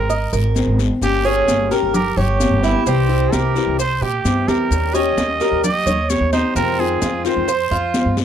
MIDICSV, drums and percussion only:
0, 0, Header, 1, 2, 480
1, 0, Start_track
1, 0, Key_signature, -4, "minor"
1, 0, Tempo, 461538
1, 1063, Time_signature, 4, 2, 24, 8
1, 8578, End_track
2, 0, Start_track
2, 0, Title_t, "Drums"
2, 103, Note_on_c, 9, 63, 35
2, 103, Note_on_c, 9, 74, 64
2, 105, Note_on_c, 9, 70, 67
2, 207, Note_off_c, 9, 63, 0
2, 207, Note_off_c, 9, 74, 0
2, 209, Note_off_c, 9, 70, 0
2, 343, Note_on_c, 9, 63, 35
2, 344, Note_on_c, 9, 70, 58
2, 447, Note_off_c, 9, 63, 0
2, 448, Note_off_c, 9, 70, 0
2, 582, Note_on_c, 9, 63, 93
2, 584, Note_on_c, 9, 73, 73
2, 585, Note_on_c, 9, 70, 58
2, 686, Note_off_c, 9, 63, 0
2, 688, Note_off_c, 9, 73, 0
2, 689, Note_off_c, 9, 70, 0
2, 820, Note_on_c, 9, 63, 82
2, 825, Note_on_c, 9, 73, 68
2, 827, Note_on_c, 9, 70, 32
2, 924, Note_off_c, 9, 63, 0
2, 929, Note_off_c, 9, 73, 0
2, 931, Note_off_c, 9, 70, 0
2, 1063, Note_on_c, 9, 63, 38
2, 1065, Note_on_c, 9, 70, 67
2, 1066, Note_on_c, 9, 74, 73
2, 1167, Note_off_c, 9, 63, 0
2, 1169, Note_off_c, 9, 70, 0
2, 1170, Note_off_c, 9, 74, 0
2, 1303, Note_on_c, 9, 63, 36
2, 1407, Note_off_c, 9, 63, 0
2, 1540, Note_on_c, 9, 63, 87
2, 1543, Note_on_c, 9, 73, 59
2, 1545, Note_on_c, 9, 70, 69
2, 1644, Note_off_c, 9, 63, 0
2, 1647, Note_off_c, 9, 73, 0
2, 1649, Note_off_c, 9, 70, 0
2, 1783, Note_on_c, 9, 63, 34
2, 1785, Note_on_c, 9, 70, 30
2, 1785, Note_on_c, 9, 73, 70
2, 1887, Note_off_c, 9, 63, 0
2, 1889, Note_off_c, 9, 70, 0
2, 1889, Note_off_c, 9, 73, 0
2, 2021, Note_on_c, 9, 63, 34
2, 2021, Note_on_c, 9, 64, 90
2, 2021, Note_on_c, 9, 74, 60
2, 2022, Note_on_c, 9, 70, 70
2, 2125, Note_off_c, 9, 63, 0
2, 2125, Note_off_c, 9, 64, 0
2, 2125, Note_off_c, 9, 74, 0
2, 2126, Note_off_c, 9, 70, 0
2, 2261, Note_on_c, 9, 63, 33
2, 2261, Note_on_c, 9, 64, 62
2, 2365, Note_off_c, 9, 63, 0
2, 2365, Note_off_c, 9, 64, 0
2, 2496, Note_on_c, 9, 63, 81
2, 2502, Note_on_c, 9, 70, 66
2, 2502, Note_on_c, 9, 73, 75
2, 2600, Note_off_c, 9, 63, 0
2, 2606, Note_off_c, 9, 70, 0
2, 2606, Note_off_c, 9, 73, 0
2, 2740, Note_on_c, 9, 63, 70
2, 2740, Note_on_c, 9, 73, 75
2, 2742, Note_on_c, 9, 70, 30
2, 2844, Note_off_c, 9, 63, 0
2, 2844, Note_off_c, 9, 73, 0
2, 2846, Note_off_c, 9, 70, 0
2, 2977, Note_on_c, 9, 74, 69
2, 2980, Note_on_c, 9, 70, 69
2, 2982, Note_on_c, 9, 63, 39
2, 3081, Note_off_c, 9, 74, 0
2, 3084, Note_off_c, 9, 70, 0
2, 3086, Note_off_c, 9, 63, 0
2, 3224, Note_on_c, 9, 63, 34
2, 3328, Note_off_c, 9, 63, 0
2, 3458, Note_on_c, 9, 63, 95
2, 3462, Note_on_c, 9, 73, 66
2, 3464, Note_on_c, 9, 70, 76
2, 3562, Note_off_c, 9, 63, 0
2, 3566, Note_off_c, 9, 73, 0
2, 3568, Note_off_c, 9, 70, 0
2, 3701, Note_on_c, 9, 63, 33
2, 3704, Note_on_c, 9, 73, 67
2, 3706, Note_on_c, 9, 70, 28
2, 3805, Note_off_c, 9, 63, 0
2, 3808, Note_off_c, 9, 73, 0
2, 3810, Note_off_c, 9, 70, 0
2, 3940, Note_on_c, 9, 74, 67
2, 3943, Note_on_c, 9, 63, 31
2, 3946, Note_on_c, 9, 70, 65
2, 4044, Note_off_c, 9, 74, 0
2, 4047, Note_off_c, 9, 63, 0
2, 4050, Note_off_c, 9, 70, 0
2, 4184, Note_on_c, 9, 63, 36
2, 4288, Note_off_c, 9, 63, 0
2, 4420, Note_on_c, 9, 73, 73
2, 4421, Note_on_c, 9, 63, 87
2, 4426, Note_on_c, 9, 70, 66
2, 4524, Note_off_c, 9, 73, 0
2, 4525, Note_off_c, 9, 63, 0
2, 4530, Note_off_c, 9, 70, 0
2, 4661, Note_on_c, 9, 63, 78
2, 4663, Note_on_c, 9, 73, 69
2, 4668, Note_on_c, 9, 70, 29
2, 4765, Note_off_c, 9, 63, 0
2, 4767, Note_off_c, 9, 73, 0
2, 4772, Note_off_c, 9, 70, 0
2, 4904, Note_on_c, 9, 74, 68
2, 4906, Note_on_c, 9, 63, 35
2, 4906, Note_on_c, 9, 70, 74
2, 5008, Note_off_c, 9, 74, 0
2, 5010, Note_off_c, 9, 63, 0
2, 5010, Note_off_c, 9, 70, 0
2, 5147, Note_on_c, 9, 63, 33
2, 5147, Note_on_c, 9, 70, 66
2, 5251, Note_off_c, 9, 63, 0
2, 5251, Note_off_c, 9, 70, 0
2, 5382, Note_on_c, 9, 73, 62
2, 5384, Note_on_c, 9, 63, 87
2, 5385, Note_on_c, 9, 70, 65
2, 5486, Note_off_c, 9, 73, 0
2, 5488, Note_off_c, 9, 63, 0
2, 5489, Note_off_c, 9, 70, 0
2, 5618, Note_on_c, 9, 73, 71
2, 5625, Note_on_c, 9, 63, 37
2, 5626, Note_on_c, 9, 70, 32
2, 5722, Note_off_c, 9, 73, 0
2, 5729, Note_off_c, 9, 63, 0
2, 5730, Note_off_c, 9, 70, 0
2, 5860, Note_on_c, 9, 74, 58
2, 5866, Note_on_c, 9, 70, 74
2, 5868, Note_on_c, 9, 63, 33
2, 5868, Note_on_c, 9, 64, 80
2, 5964, Note_off_c, 9, 74, 0
2, 5970, Note_off_c, 9, 70, 0
2, 5972, Note_off_c, 9, 63, 0
2, 5972, Note_off_c, 9, 64, 0
2, 6104, Note_on_c, 9, 70, 62
2, 6107, Note_on_c, 9, 63, 35
2, 6107, Note_on_c, 9, 64, 62
2, 6208, Note_off_c, 9, 70, 0
2, 6211, Note_off_c, 9, 63, 0
2, 6211, Note_off_c, 9, 64, 0
2, 6342, Note_on_c, 9, 73, 73
2, 6343, Note_on_c, 9, 70, 64
2, 6346, Note_on_c, 9, 63, 91
2, 6446, Note_off_c, 9, 73, 0
2, 6447, Note_off_c, 9, 70, 0
2, 6450, Note_off_c, 9, 63, 0
2, 6580, Note_on_c, 9, 73, 68
2, 6581, Note_on_c, 9, 70, 31
2, 6585, Note_on_c, 9, 63, 68
2, 6684, Note_off_c, 9, 73, 0
2, 6685, Note_off_c, 9, 70, 0
2, 6689, Note_off_c, 9, 63, 0
2, 6819, Note_on_c, 9, 74, 66
2, 6824, Note_on_c, 9, 70, 67
2, 6825, Note_on_c, 9, 63, 37
2, 6923, Note_off_c, 9, 74, 0
2, 6928, Note_off_c, 9, 70, 0
2, 6929, Note_off_c, 9, 63, 0
2, 7062, Note_on_c, 9, 63, 34
2, 7166, Note_off_c, 9, 63, 0
2, 7298, Note_on_c, 9, 73, 65
2, 7300, Note_on_c, 9, 63, 83
2, 7300, Note_on_c, 9, 70, 76
2, 7402, Note_off_c, 9, 73, 0
2, 7404, Note_off_c, 9, 63, 0
2, 7404, Note_off_c, 9, 70, 0
2, 7538, Note_on_c, 9, 73, 77
2, 7540, Note_on_c, 9, 63, 34
2, 7545, Note_on_c, 9, 70, 28
2, 7642, Note_off_c, 9, 73, 0
2, 7644, Note_off_c, 9, 63, 0
2, 7649, Note_off_c, 9, 70, 0
2, 7778, Note_on_c, 9, 74, 71
2, 7783, Note_on_c, 9, 63, 34
2, 7783, Note_on_c, 9, 70, 73
2, 7882, Note_off_c, 9, 74, 0
2, 7887, Note_off_c, 9, 63, 0
2, 7887, Note_off_c, 9, 70, 0
2, 8019, Note_on_c, 9, 63, 35
2, 8123, Note_off_c, 9, 63, 0
2, 8258, Note_on_c, 9, 73, 75
2, 8259, Note_on_c, 9, 63, 96
2, 8260, Note_on_c, 9, 70, 68
2, 8362, Note_off_c, 9, 73, 0
2, 8363, Note_off_c, 9, 63, 0
2, 8364, Note_off_c, 9, 70, 0
2, 8497, Note_on_c, 9, 73, 70
2, 8498, Note_on_c, 9, 63, 92
2, 8505, Note_on_c, 9, 70, 32
2, 8578, Note_off_c, 9, 63, 0
2, 8578, Note_off_c, 9, 70, 0
2, 8578, Note_off_c, 9, 73, 0
2, 8578, End_track
0, 0, End_of_file